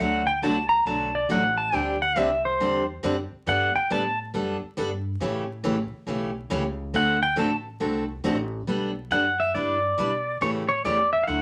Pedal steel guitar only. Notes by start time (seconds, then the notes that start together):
0.00 F#5
0.27 G5
0.43 A5
0.69 A#5
0.87 A5
1.15 D5
1.32 F#5
1.58 A5
1.75 G5
2.02 F#5
2.18 E5
2.45 C5
3.49 F#5
3.75 G5
3.92 A5
6.96 F#5
7.23 G5
7.40 A5
9.12 F#5
9.40 E5
9.55 D5
10.42 C#5
10.69 C#5
10.85 D5
11.13 E5
11.23 F5
11.27 F#5